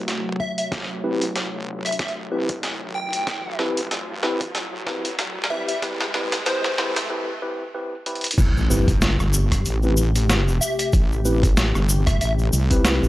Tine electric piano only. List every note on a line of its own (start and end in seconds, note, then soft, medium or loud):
1.04 1.24 C4 medium
1.04 1.24 E4 medium
1.04 1.24 G4 medium
1.04 1.24 B4 medium
2.31 2.51 C4 loud
2.31 2.51 E4 medium
2.31 2.51 G4 medium
2.31 2.51 B4 loud
3.59 3.79 C4 medium
3.59 3.79 E4 medium
3.59 3.79 G4 medium
3.59 3.79 B4 loud
4.23 4.43 C4 medium
4.23 4.43 E4 medium
4.23 4.43 G4 medium
4.23 4.43 B4 loud
4.87 5.07 C4 loud
4.87 5.07 E4 medium
4.87 5.07 G4 medium
4.87 5.07 B4 loud
5.51 5.71 C4 loud
5.51 5.71 E4 medium
5.51 5.71 G4 medium
5.51 5.71 B4 loud
5.83 6.02 C4 medium
5.83 6.02 E4 medium
5.83 6.02 G4 medium
5.83 6.02 B4 loud
6.15 6.34 C4 medium
6.15 6.34 E4 medium
6.15 6.34 G4 medium
6.15 6.34 B4 loud
6.46 6.66 C4 medium
6.46 6.66 E4 medium
6.46 6.66 G4 medium
6.46 6.66 B4 loud
6.78 6.98 C4 loud
6.78 6.98 E4 medium
6.78 6.98 G4 medium
6.78 6.98 B4 loud
7.10 7.30 C4 loud
7.10 7.30 E4 medium
7.10 7.30 G4 loud
7.10 7.30 B4 loud
7.42 7.62 C4 loud
7.42 7.62 E4 medium
7.42 7.62 G4 medium
7.42 7.62 B4 loud
7.74 7.94 C4 loud
7.74 7.94 E4 medium
7.74 7.94 G4 medium
7.74 7.94 B4 loud
8.06 8.26 C4 medium
8.06 8.26 E4 medium
8.06 8.26 G4 medium
8.06 8.26 B4 loud
8.70 8.90 C4 medium
8.70 8.90 E4 medium
8.70 8.90 G4 medium
8.70 8.90 B4 medium
9.84 10.00 C4 medium
9.84 10.00 E4 medium
9.84 10.00 G4 medium
9.84 10.00 B4 medium
11.25 11.45 C4 medium
11.25 11.45 E4 medium
11.25 11.45 G4 medium
11.25 11.45 B4 medium
12.71 12.99 C4 loud
12.71 12.98 E4 medium
12.71 12.98 G4 medium
12.71 12.99 B4 loud
13.03 13.08 C4 medium
13.03 13.08 E4 medium
13.03 13.08 G4 medium
13.03 13.08 B4 medium